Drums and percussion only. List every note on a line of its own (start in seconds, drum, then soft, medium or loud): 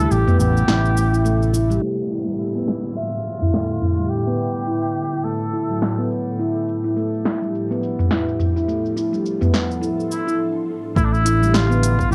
0.12 shaker soft
0.28 mid tom medium
0.28 shaker soft
0.40 shaker medium
0.57 shaker soft
0.68 snare medium
0.68 shaker soft
0.85 shaker soft
0.97 shaker medium
1.14 shaker soft
1.26 shaker soft
1.42 shaker soft
1.54 shaker medium
1.71 shaker soft
2.68 snare medium
3.26 shaker medium
3.42 mid tom medium
3.54 snare medium
3.82 mid tom medium
3.82 shaker medium
3.99 shaker soft
4.11 shaker soft
4.40 shaker medium
4.56 shaker soft
4.68 shaker soft
4.85 shaker soft
4.97 shaker medium
5.13 shaker soft
5.25 shaker soft
5.42 shaker soft
5.54 shaker medium
5.71 shaker soft
5.82 snare medium
5.82 shaker soft
6.00 shaker soft
6.11 shaker medium
6.28 shaker soft
6.40 shaker soft
6.57 shaker soft
6.68 shaker medium
6.85 shaker soft
6.98 shaker soft
7.14 shaker soft
7.25 snare medium
7.25 shaker medium
7.43 shaker soft
7.55 shaker soft
7.71 shaker soft
7.83 shaker medium
7.99 mid tom soft
7.99 shaker soft
8.11 snare medium
8.11 shaker soft
8.29 shaker soft
8.39 mid tom medium
8.39 shaker medium
8.57 shaker soft
8.69 shaker soft
8.86 shaker soft
8.97 shaker medium
9.14 shaker soft
9.26 shaker soft
9.42 mid tom medium
9.42 shaker soft
9.54 snare medium
9.54 shaker medium
9.71 shaker soft
9.83 shaker soft
10.00 shaker soft
10.12 shaker medium
10.28 shaker soft
10.96 kick loud
10.96 shaker soft
11.14 shaker soft
11.26 closed hi-hat medium
11.26 shaker medium
11.43 shaker soft
11.54 snare medium
11.54 shaker soft
11.72 shaker soft
11.83 closed hi-hat medium
11.83 shaker medium
11.99 kick medium
11.99 shaker soft